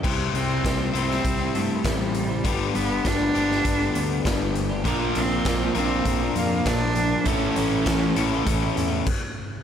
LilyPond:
<<
  \new Staff \with { instrumentName = "Clean electric guitar" } { \time 4/4 \key c \lydian \tempo 4 = 100 <c g c' e' g' c''>8 <c' e' g' c''>8 <c g c' e' g' c''>16 <c' e' g' c''>16 <c' e' g' c''>16 <c' e' g' c''>8 <c' e' g' c''>16 <c' e' g' c''>8 <c g c' e' g' c''>16 <c' e' g' c''>8 <c' e' g' c''>16 | <g, d g b d' g'>8 <g b d' g'>8 <g, d g b d' g'>16 <g b d' g'>16 <g b d' g'>16 <g b d' g'>8 <g b d' g'>16 <g b d' g'>8 <g, d g b d' g'>16 <g b d' g'>8 <g b d' g'>16 | <bes, f bes d' f' bes'>8 <bes d' f' bes'>8 <bes, f bes d' f' bes'>16 <bes d' f' bes'>16 <bes d' f' bes'>16 <bes d' f' bes'>8 <bes d' f' bes'>16 <bes d' f' bes'>8 <bes, f bes d' f' bes'>16 <bes d' f' bes'>8 <bes d' f' bes'>16 | <a, e a cis' e' a'>8 <a cis' e' a'>8 <a, e a cis' e' a'>16 <a cis' e' a'>16 <a cis' e' a'>16 <a cis' e' a'>8 <a cis' e' a'>16 <a cis' e' a'>8 r4 | }
  \new Staff \with { instrumentName = "Cello" } { \time 4/4 \key c \lydian r8 c'4 c'4 a8 g8 g8~ | g8 b8 d'2~ d'8 r8 | r8 c'4 c'4 bes8 d'4 | cis'2. r4 | }
  \new Staff \with { instrumentName = "Overdriven electric guitar" } { \time 4/4 \key c \lydian <c g c' e' g' c''>4. <c g c' e' g' c''>2~ <c g c' e' g' c''>8 | <g, d g b d' g'>4. <g, d g b d' g'>2~ <g, d g b d' g'>8 | <bes, f bes d' f' bes'>4. <bes, f bes d' f' bes'>2~ <bes, f bes d' f' bes'>8 | <a, e a cis' e' a'>4. <a, e a cis' e' a'>4. r4 | }
  \new Staff \with { instrumentName = "Overdriven electric guitar" } { \time 4/4 \key c \lydian r1 | r1 | <bes, f bes d' f' bes'>1 | <a, e a cis' e' a'>2. r4 | }
  \new Staff \with { instrumentName = "Picked electric bass" } { \clef bass \time 4/4 \key c \lydian c,8 c,8 c,8 c,8 c,8 g,8 a,,4 | g,,8 g,,8 g,,8 g,,8 g,,8 d,8 g,,4 | bes,,8 bes,,8 bes,,8 bes,,8 bes,,8 f,8 bes,,4 | a,,8 a,,8 a,,8 a,,8 a,,8 e,8 r4 | }
  \new DrumStaff \with { instrumentName = "Drums" } \drummode { \time 4/4 <cymc bd>8 hh8 <hh bd sn>8 hh16 sn16 <hh bd>8 hh8 <hh bd sn>8 hh8 | <hh bd>8 hh8 <hh bd sn>8 hh16 sn16 <hh bd>8 hh8 <hh bd sn>8 hh8 | <hh bd>8 hh8 <hh bd sn>8 hh8 <hh bd>8 hh8 <hh bd sn>8 hh8 | <hh bd>8 hh8 <hh bd sn>8 hh8 <hh bd>8 hh8 <cymc bd>4 | }
>>